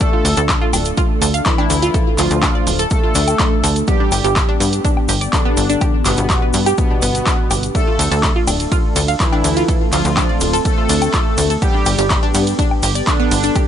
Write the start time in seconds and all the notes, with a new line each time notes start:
Already playing: D4
0.00 A3 D4 A4, kick, closed hi-hat, shaker
0.13 F4
0.25 D2, open hi-hat, shaker
0.37 D2 A4, closed hi-hat, shaker
0.49 kick, clap, closed hi-hat, shaker
0.62 F4
0.73 D1 D4, open hi-hat, low woodblock, shaker
0.85 closed hi-hat, shaker
0.97 F4, kick, closed hi-hat, shaker
1.22 D2 A4, open hi-hat, shaker
1.34 F5, closed hi-hat, shaker
1.45 E3 E4, kick, clap, closed hi-hat, shaker
1.58 D4, low woodblock
1.70 D2, open hi-hat, shaker
1.82 F4, closed hi-hat, shaker
1.94 A4, kick, closed hi-hat, shaker
2.18 D2 F3 F4, clap, open hi-hat, shaker
2.30 D2, closed hi-hat, shaker
2.43 D4, kick, clap, closed hi-hat, low woodblock, shaker
2.55 D5
2.67 D1, open hi-hat, shaker
2.79 A4, closed hi-hat, shaker
2.90 A3 A4, kick, closed hi-hat, shaker
3.03 F4
3.15 D2 D4, open hi-hat, shaker
3.27 closed hi-hat, low woodblock, shaker
3.39 F4, kick, clap, closed hi-hat, shaker
3.64 D2 A4, open hi-hat, shaker
3.76 closed hi-hat, shaker
3.87 G3 B3 G4, kick, closed hi-hat, shaker
4.00 D4
4.12 G1, open hi-hat, low woodblock, shaker
4.24 G1 G4, closed hi-hat, shaker
4.36 kick, clap, closed hi-hat, shaker
4.49 D4
4.60 G2 B3, open hi-hat, shaker
4.73 closed hi-hat, shaker
4.84 D4, kick, closed hi-hat, shaker
4.97 low woodblock
5.08 G1 G4, open hi-hat, shaker
5.21 D5, closed hi-hat, shaker
5.33 D3 D4, kick, clap, closed hi-hat, shaker
5.45 B3
5.57 G1, open hi-hat, shaker
5.70 D4, closed hi-hat, shaker
5.81 G4, kick, closed hi-hat, low woodblock, shaker
6.05 G1 B2 B3 D4, clap, open hi-hat, shaker
6.17 G1, closed hi-hat, shaker
6.30 B3, kick, clap, closed hi-hat, shaker
6.42 B4
6.53 G2, open hi-hat, shaker
6.66 G4, closed hi-hat, low woodblock, shaker
6.78 B2 B3, kick, closed hi-hat, shaker
6.90 D4
7.02 G1 B3, open hi-hat, shaker
7.15 closed hi-hat, shaker
7.26 D4, kick, clap, closed hi-hat, shaker
7.51 G1 G4, open hi-hat, low woodblock, shaker
7.63 closed hi-hat, shaker
7.75 A3 D4 A4, kick, closed hi-hat, ride, shaker
7.87 F4
7.99 D2, open hi-hat, ride, shaker
8.11 D2 A4, closed hi-hat, shaker
8.23 kick, clap, closed hi-hat, ride, shaker
8.36 F4
8.47 D1 D4, open hi-hat, ride, low woodblock, shaker
8.60 closed hi-hat, shaker
8.72 F4, kick, closed hi-hat, ride, shaker
8.96 D2 A4, open hi-hat, ride, shaker
9.08 F5, closed hi-hat, shaker
9.20 E3 E4, kick, clap, closed hi-hat, ride, shaker
9.32 D4, low woodblock
9.44 D2, open hi-hat, ride, shaker
9.56 F4, closed hi-hat, shaker
9.68 C4 A4, kick, closed hi-hat, ride, shaker
9.92 D2 F3 F4, clap, open hi-hat, ride, shaker
10.05 D2, closed hi-hat, shaker
10.17 D4, kick, clap, closed hi-hat, ride, low woodblock, shaker
10.29 D5
10.40 D1, open hi-hat, ride, shaker
10.53 A4, closed hi-hat, shaker
10.65 A3 A4, kick, closed hi-hat, ride, shaker
10.78 F4
10.89 D2 D4, open hi-hat, ride, shaker
11.02 closed hi-hat, low woodblock, shaker
11.13 F4, kick, clap, closed hi-hat, ride, shaker
11.38 D2, open hi-hat, ride, shaker
11.50 A4, closed hi-hat, shaker
11.62 G3 B3 D4 G4, kick, closed hi-hat, ride, shaker
11.74 D4
11.86 G1, open hi-hat, ride, low woodblock, shaker
11.98 G1 G4, closed hi-hat, shaker
12.10 kick, clap, closed hi-hat, ride, shaker
12.23 D4
12.34 G2 B3, open hi-hat, ride, shaker
12.47 closed hi-hat, shaker
12.59 D4, kick, closed hi-hat, ride, shaker
12.71 low woodblock
12.83 G1 G4, open hi-hat, ride, shaker
12.95 D5, closed hi-hat, shaker
13.07 D3 D4, kick, clap, closed hi-hat, ride, shaker
13.20 B3
13.31 G1, open hi-hat, ride, shaker
13.43 D4, closed hi-hat, shaker
13.55 F4 G4, kick, closed hi-hat, ride, low woodblock, shaker